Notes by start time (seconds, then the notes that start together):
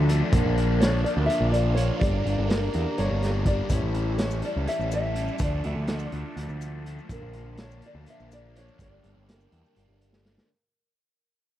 Already playing: D2 A3 D4 F4 E5 A5
0.09 D3 F3 A3 D4, closed hi-hat
0.32 A#1 A#2 D3 F3 A#3 D4 A#4 F5, kick, closed hi-hat
0.45 A#1
0.57 F3 A#3 D4, closed hi-hat
0.80 D3 F3 A#3 D4 C#5, snare, closed hi-hat
1.04 F3 A#3 D4 D5, closed hi-hat
1.17 D2
1.26 A#2 D3 F3 A#3 D4 E5, closed hi-hat
1.40 A#1
1.52 D5, closed hi-hat
1.75 D3 F3 A#3 D4 C#5, closed hi-hat
2.00 G1 G2 D3 G3 A#3 D4 G4 D5, kick, closed hi-hat
2.04 D4 A#5
2.23 G1 G3 A#3 D4, closed hi-hat
2.38 G1
2.47 D3 G3 A#3 D4 A#4, snare, closed hi-hat
2.73 E2 G3 A#3 D4, closed hi-hat
2.98 G1 G2 D3 G3 A#3 D4 C#5, closed hi-hat
3.11 G1
3.22 snare, closed hi-hat
3.46 D3 G3 A#3 D4 D5, kick, closed hi-hat
3.69 A1 A2 E3 G3 C#4 E4 C#5 E5 A5, kick, closed hi-hat, maracas
3.82 A1
3.94 G3 C#4 E4, closed hi-hat
4.18 E3 G3 C#4 E4 C#5, snare, closed hi-hat, maracas
4.31 maracas
4.42 G3 C#4 E4 D5, closed hi-hat
4.56 C#2
4.66 A2 E3 G3 C#4 E4 E5, closed hi-hat, maracas
4.79 A1, maracas
4.91 E5, closed hi-hat, maracas
5.15 E3 G3 C#4 E4, closed hi-hat
5.28 maracas
5.38 D2 D3 F3 A3 D4, kick, closed hi-hat, maracas
5.43 D4 F4 D5
5.63 D2 F3 A3 D4 E5, closed hi-hat
5.76 D2
5.87 D3 F3 A3 D4, snare, closed hi-hat, maracas
5.99 maracas
6.12 D2 F3 A3 D4, closed hi-hat
6.36 D2 D3 F3 A3 D4, closed hi-hat, maracas
6.49 D2, maracas
6.61 closed hi-hat, maracas
6.86 D3 F3 A3 D4, closed hi-hat
6.99 maracas
7.09 A#1 A#2 D3 F3 D4 A#4 F5 A5, kick, closed hi-hat, maracas
7.13 A#3 D4
7.22 A#1
7.33 A#3 D4, closed hi-hat
7.38 F3
7.57 D3 F3 A#3 C#5, snare, closed hi-hat, maracas
7.61 D4
7.71 maracas
7.82 F3 A#3 D4, closed hi-hat
7.86 D5
7.95 D2
8.06 A#2 D3 F3 A#3 D4 E5, closed hi-hat, maracas
8.20 A#1, maracas
8.32 D5, closed hi-hat, maracas
8.56 D3 F3 A#3 D4 C#5, closed hi-hat
8.68 maracas
8.78 G1 G2 D3 G3 A#3 D4, kick, closed hi-hat, maracas
8.82 D5 G5
9.03 G1 G3 A#3 D4, closed hi-hat
9.15 G1 C#5
9.26 D3 G3 A#3 D4, snare, closed hi-hat
9.32 A#4
9.41 maracas
9.51 E2 G3 A#3 D4, closed hi-hat
9.66 maracas
9.75 G1 G2 D3 G3 A#3 D4, closed hi-hat
9.89 G1
10.01 closed hi-hat
10.13 snare
10.24 D3 G3 A#3 D4, snare
10.38 snare